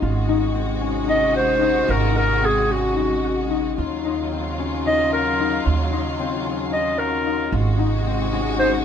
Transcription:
Already playing: harp C#4 D#4
0.02 upright bass G#1, string section C3 G#3 F#4, harp F4
0.29 harp D#4
0.55 harp C4
0.81 harp C#4
1.08 harp D#4, clarinet D#5
1.34 harp F#4, clarinet C5
1.61 harp D#4
1.88 upright bass G#1, harp F4, clarinet A#4
2.15 harp D#4, clarinet A#4
2.42 harp C4, clarinet G#4
2.69 harp C#4, clarinet F#4
2.96 harp D#4
3.24 harp F#4
3.50 harp D#4
3.78 upright bass D#2, string section C#3 F#3 F4, harp F4
4.05 harp D#4
4.32 harp C4
4.59 harp C#4
4.86 harp D#4, clarinet D#5
5.13 harp F#4, clarinet A#4
5.40 harp D#4
5.65 upright bass D#2, harp F4
5.92 harp D#4
6.20 harp C4
6.46 harp C#4
6.73 harp D#4, clarinet D#5
6.99 harp F#4, clarinet A#4
7.26 harp D#4
7.52 upright bass G#1, string section C3 G#3 F#4, harp F4
7.79 harp D#4
8.06 harp C4
8.33 harp C#4
8.59 harp D#4, clarinet C5

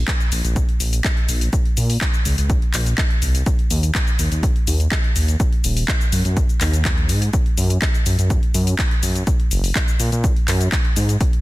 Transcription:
0.08 kick, clap, closed hi-hat, shaker
0.20 closed hi-hat, shaker
0.32 detuned saw bass A#1, open hi-hat, shaker
0.45 detuned saw bass A#1, closed hi-hat, shaker
0.56 kick, closed hi-hat, shaker
0.69 closed hi-hat
0.80 detuned saw bass A#1, open hi-hat, shaker
0.93 closed hi-hat, shaker
1.04 kick, clap, closed hi-hat, shaker
1.17 closed hi-hat
1.29 detuned saw bass A#1, open hi-hat, shaker
1.41 closed hi-hat, shaker
1.53 kick, closed hi-hat, shaker
1.66 closed hi-hat
1.77 detuned saw bass A#2, open hi-hat, shaker
1.90 open hi-hat, shaker
2.01 kick, clap, shaker
2.14 closed hi-hat, shaker
2.25 detuned saw bass C#2, open hi-hat, shaker
2.38 detuned saw bass C#2, closed hi-hat, shaker
2.50 kick, closed hi-hat, shaker
2.62 closed hi-hat
2.74 detuned saw bass A#1, clap, open hi-hat, shaker
2.86 closed hi-hat, shaker
2.98 kick, clap, closed hi-hat, shaker
3.11 closed hi-hat
3.22 detuned saw bass C2, open hi-hat, shaker
3.35 closed hi-hat, shaker
3.46 kick, closed hi-hat, shaker
3.59 closed hi-hat
3.71 detuned saw bass D#2, open hi-hat, shaker
3.83 closed hi-hat, shaker
3.95 kick, clap, closed hi-hat, shaker
4.07 closed hi-hat, shaker
4.19 detuned saw bass D#2, open hi-hat, shaker
4.32 detuned saw bass D#2, closed hi-hat, shaker
4.43 kick, closed hi-hat, shaker
4.56 closed hi-hat
4.67 detuned saw bass D#2, open hi-hat, shaker
4.80 closed hi-hat, shaker
4.92 kick, clap, closed hi-hat, shaker
5.04 closed hi-hat
5.16 detuned saw bass D#2, open hi-hat, shaker
5.28 closed hi-hat, shaker
5.40 kick, closed hi-hat, shaker
5.53 closed hi-hat
5.64 detuned saw bass D#1, open hi-hat, shaker
5.77 open hi-hat, shaker
5.88 kick, clap, closed hi-hat, shaker
6.01 closed hi-hat, shaker
6.12 detuned saw bass F#2, open hi-hat, shaker
6.25 detuned saw bass F#2, closed hi-hat, shaker
6.37 kick, closed hi-hat, shaker
6.49 closed hi-hat, shaker
6.61 detuned saw bass D#2, clap, open hi-hat, shaker
6.73 closed hi-hat, shaker
6.85 kick, clap, closed hi-hat, shaker
6.98 closed hi-hat
7.09 detuned saw bass G#2, open hi-hat, shaker
7.22 closed hi-hat, shaker
7.33 kick, closed hi-hat, shaker
7.46 closed hi-hat
7.58 detuned saw bass F#2, open hi-hat, shaker
7.70 closed hi-hat, shaker
7.82 kick, clap, closed hi-hat, shaker
7.94 closed hi-hat, shaker
8.06 detuned saw bass F#2, open hi-hat, shaker
8.19 detuned saw bass F#2, closed hi-hat, shaker
8.30 kick, closed hi-hat, shaker
8.43 closed hi-hat
8.54 detuned saw bass F#2, open hi-hat, shaker
8.67 closed hi-hat, shaker
8.79 kick, clap, closed hi-hat, shaker
8.91 closed hi-hat
9.03 detuned saw bass F#2, open hi-hat, shaker
9.15 closed hi-hat, shaker
9.27 kick, closed hi-hat, shaker
9.40 closed hi-hat
9.51 detuned saw bass F#1, open hi-hat, shaker
9.64 open hi-hat, shaker
9.75 kick, clap, shaker
9.88 closed hi-hat, shaker
10.00 detuned saw bass A#2, open hi-hat, shaker
10.12 detuned saw bass A#2, closed hi-hat, shaker
10.24 kick, closed hi-hat, shaker
10.36 closed hi-hat
10.48 detuned saw bass F#2, clap, open hi-hat, shaker
10.61 closed hi-hat, shaker
10.72 kick, clap, closed hi-hat, shaker
10.85 closed hi-hat
10.96 detuned saw bass G#2, open hi-hat, shaker
11.09 closed hi-hat, shaker
11.21 kick, closed hi-hat, shaker
11.33 closed hi-hat

